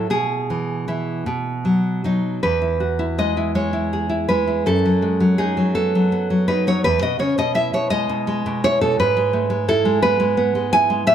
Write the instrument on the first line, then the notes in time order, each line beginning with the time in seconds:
nylon-string guitar
0.10 B2 G#4
0.50 E3
0.88 E3 E4
1.26 B2
1.65 F#3
2.04 F#3 D#4
2.43 E2 B4
2.62 E4
2.80 F#4
2.99 E4
3.18 G#3 D#5
3.37 E4
3.55 G#3 C#5
3.73 E4
3.93 G#4
4.09 E4
4.29 G#3 B4
4.47 E4
4.66 F#2 A4
4.85 F#3
5.02 G#3
5.20 F#3
5.38 D#4 G#4
5.57 F#3
5.75 B3 A4
5.95 F#3
6.12 B3
6.30 F#3
6.48 D#4 B4
6.67 F#3 C#5
6.84 E2 B4
7.02 B2 D#5
7.19 C#3 C#5
7.38 B2 D#5
7.55 E4 E5
7.73 B2 C#5
7.90 G#3 D#5
8.09 B2
8.27 G#3
8.46 B2
8.64 E4 C#5
8.81 B2 A4
9.00 G#2 B4
9.17 G#3
9.33 A3
9.50 G#3
9.68 E4 A4
9.85 G#3
10.02 B3 B4
10.20 G#3
10.37 B3
10.55 G#3
10.73 E4 G#5
10.90 G#3
11.07 A2 E5